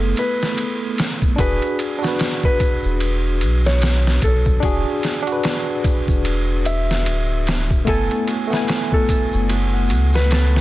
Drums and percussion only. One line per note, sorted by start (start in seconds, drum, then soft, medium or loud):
0.16 ride medium
0.16 maracas medium
0.41 snare medium
0.41 maracas medium
0.57 ride medium
0.57 maracas soft
0.98 snare loud
0.98 ride medium
0.98 maracas medium
1.22 kick medium
1.22 maracas medium
1.38 kick loud
1.38 ride medium
1.38 maracas soft
1.62 ride soft
1.79 ride medium
1.79 maracas medium
2.03 snare medium
2.03 maracas medium
2.19 snare loud
2.19 ride medium
2.19 maracas soft
2.43 kick medium
2.60 kick medium
2.60 ride medium
2.60 maracas loud
2.83 maracas medium
3.00 ride medium
3.00 maracas soft
3.41 ride medium
3.41 maracas medium
3.65 snare medium
3.65 maracas soft
3.81 snare loud
3.81 ride medium
3.81 maracas soft
4.07 snare medium
4.22 kick medium
4.22 ride medium
4.22 maracas loud
4.45 kick medium
4.45 maracas medium
4.62 kick loud
4.62 ride medium
4.62 maracas soft
5.03 snare medium
5.03 ride medium
5.03 maracas medium
5.27 ride soft
5.27 maracas medium
5.43 snare loud
5.43 ride medium
5.43 maracas soft
5.84 kick loud
5.84 ride medium
5.84 maracas medium
6.08 kick medium
6.08 maracas medium
6.25 ride medium
6.25 maracas soft
6.65 ride medium
6.65 maracas loud
6.90 snare medium
6.90 maracas medium
7.06 ride medium
7.06 maracas soft
7.47 snare loud
7.47 ride medium
7.47 maracas loud
7.70 kick medium
7.70 maracas medium
7.87 kick loud
7.87 ride loud
7.87 maracas soft
8.11 ride soft
8.27 ride medium
8.27 maracas medium
8.52 snare medium
8.52 maracas medium
8.68 snare loud
8.68 ride medium
8.68 maracas soft
8.92 kick medium
9.09 kick loud
9.09 ride medium
9.09 maracas loud
9.33 maracas medium
9.49 ride loud
9.49 maracas soft
9.89 ride medium
9.89 maracas loud
10.13 snare medium
10.13 maracas medium
10.31 snare loud
10.31 ride medium
10.31 maracas soft
10.56 snare medium